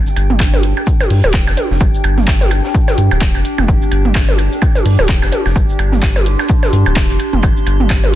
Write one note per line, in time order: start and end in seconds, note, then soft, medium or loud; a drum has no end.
0.00 8.15 D4 medium
0.00 8.15 G4 medium
0.00 5.72 G5 medium
0.07 shaker soft
0.16 0.73 G1 medium
0.16 closed hi-hat loud
0.16 closed hi-hat medium
0.16 percussion blips soft
0.30 mid tom medium
0.40 kick loud
0.40 snare loud
0.40 clap loud
0.40 closed hi-hat medium
0.40 percussion blips medium
0.40 shaker medium
0.54 high tom medium
0.54 shaker soft
0.63 closed hi-hat medium
0.63 closed hi-hat loud
0.77 percussion blips soft
0.87 kick loud
0.87 closed hi-hat loud
0.87 shaker medium
1.01 closed hi-hat soft
1.01 high tom medium
1.01 percussion blips medium
1.01 shaker soft
1.10 1.22 G2 loud
1.10 closed hi-hat medium
1.10 open hi-hat medium
1.24 1.49 D1 medium
1.24 high tom medium
1.24 percussion blips soft
1.24 shaker soft
1.33 kick loud
1.33 snare loud
1.33 clap medium
1.33 closed hi-hat medium
1.33 shaker medium
1.47 1.55 F1 medium
1.47 snare soft
1.47 percussion blips medium
1.47 shaker soft
1.57 closed hi-hat medium
1.57 high tom medium
1.71 1.79 F1 medium
1.71 snare soft
1.80 1.92 G1 loud
1.80 kick loud
1.80 closed hi-hat medium
1.80 percussion blips soft
1.80 shaker medium
1.94 shaker soft
2.04 2.61 G1 medium
2.04 closed hi-hat medium
2.04 closed hi-hat loud
2.04 percussion blips medium
2.18 snare soft
2.18 mid tom medium
2.28 kick loud
2.28 snare loud
2.28 clap medium
2.28 percussion blips soft
2.28 shaker medium
2.41 snare medium
2.41 high tom medium
2.41 shaker soft
2.51 closed hi-hat loud
2.51 closed hi-hat medium
2.51 percussion blips medium
2.64 snare medium
2.75 kick loud
2.75 closed hi-hat medium
2.75 shaker medium
2.88 snare medium
2.88 high tom medium
2.88 percussion blips soft
2.88 shaker soft
2.98 3.09 G2 loud
2.98 closed hi-hat medium
3.11 3.36 D1 medium
3.11 percussion blips medium
3.11 shaker soft
3.21 kick loud
3.21 snare loud
3.21 clap medium
3.21 closed hi-hat medium
3.21 shaker medium
3.35 3.43 F1 medium
3.35 closed hi-hat soft
3.35 percussion blips soft
3.35 shaker soft
3.45 closed hi-hat loud
3.45 closed hi-hat medium
3.58 3.66 F1 medium
3.58 mid tom medium
3.58 percussion blips medium
3.68 3.79 G1 loud
3.68 kick loud
3.68 closed hi-hat medium
3.68 shaker medium
3.82 shaker soft
3.92 4.48 G1 medium
3.92 closed hi-hat medium
3.92 percussion blips soft
4.05 mid tom medium
4.15 kick loud
4.15 snare loud
4.15 clap medium
4.15 closed hi-hat medium
4.15 percussion blips medium
4.15 shaker medium
4.29 high tom medium
4.29 shaker soft
4.38 closed hi-hat medium
4.38 percussion blips soft
4.52 shaker soft
4.62 kick loud
4.62 closed hi-hat medium
4.62 percussion blips medium
4.62 shaker medium
4.75 closed hi-hat soft
4.75 high tom medium
4.75 shaker soft
4.85 4.97 G2 loud
4.85 closed hi-hat medium
4.85 open hi-hat medium
4.99 5.24 D1 loud
4.99 high tom medium
4.99 percussion blips soft
4.99 shaker soft
5.09 kick loud
5.09 snare loud
5.09 clap medium
5.09 shaker medium
5.22 5.30 F1 medium
5.22 snare soft
5.22 percussion blips medium
5.22 shaker soft
5.32 closed hi-hat medium
5.32 closed hi-hat loud
5.32 high tom medium
5.45 5.54 F1 medium
5.45 snare soft
5.45 percussion blips soft
5.56 5.67 G1 medium
5.56 kick loud
5.56 closed hi-hat medium
5.56 percussion blips soft
5.56 shaker medium
5.69 8.15 C6 medium
5.69 shaker soft
5.79 6.36 G1 medium
5.79 closed hi-hat medium
5.79 percussion blips medium
5.92 snare soft
5.92 mid tom medium
6.02 kick loud
6.02 snare loud
6.02 clap medium
6.02 closed hi-hat medium
6.02 shaker medium
6.16 snare medium
6.16 high tom medium
6.16 percussion blips soft
6.16 shaker soft
6.26 closed hi-hat medium
6.39 snare medium
6.39 percussion blips medium
6.48 kick loud
6.48 closed hi-hat medium
6.48 shaker medium
6.63 snare soft
6.63 high tom medium
6.63 percussion blips soft
6.63 shaker soft
6.73 6.84 G2 loud
6.73 closed hi-hat medium
6.86 7.11 D1 loud
6.86 percussion blips medium
6.86 shaker soft
6.96 kick loud
6.96 snare loud
6.96 clap medium
6.96 closed hi-hat medium
6.96 shaker medium
7.10 7.18 F1 medium
7.10 closed hi-hat soft
7.10 shaker soft
7.20 closed hi-hat medium
7.20 percussion blips soft
7.33 7.41 F1 medium
7.33 mid tom medium
7.43 7.54 G1 medium
7.43 kick loud
7.43 closed hi-hat medium
7.43 percussion blips medium
7.43 shaker medium
7.57 shaker soft
7.67 8.15 G1 medium
7.67 closed hi-hat medium
7.67 percussion blips soft
7.80 mid tom medium
7.90 kick loud
7.90 snare loud
7.90 clap medium
7.90 closed hi-hat medium
7.90 percussion blips medium
7.90 shaker medium
8.04 high tom medium
8.04 shaker soft